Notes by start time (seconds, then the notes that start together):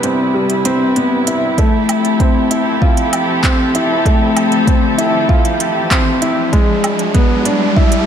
Already playing: C2 C3 G3 B3 C4 D4 E4 B4
0.03 C4, closed hi-hat
0.34 G3
0.50 closed hi-hat
0.65 C4, closed hi-hat
0.96 B3, closed hi-hat
1.27 E4, closed hi-hat
1.58 F3 A3 C4 G4 A4, kick, closed hi-hat, riser
1.89 closed hi-hat, low woodblock
2.05 closed hi-hat
2.20 C4, kick, closed hi-hat
2.51 E4, closed hi-hat
2.82 F4, kick
2.97 closed hi-hat
3.13 closed hi-hat, low woodblock
3.44 C4, kick, clap, closed hi-hat
3.75 E4, closed hi-hat
4.05 A3, kick, closed hi-hat
4.37 closed hi-hat, low woodblock
4.52 closed hi-hat
4.67 C4, kick, closed hi-hat
4.98 E4, closed hi-hat
5.29 F4, kick
5.45 closed hi-hat
5.60 closed hi-hat
5.91 C4, kick, clap, closed hi-hat
6.22 E4, closed hi-hat
6.53 G#3 D4, kick, closed hi-hat
6.84 closed hi-hat, low woodblock
6.99 closed hi-hat
7.15 B3, kick, closed hi-hat
7.45 D4, closed hi-hat
7.76 E4, kick
7.92 closed hi-hat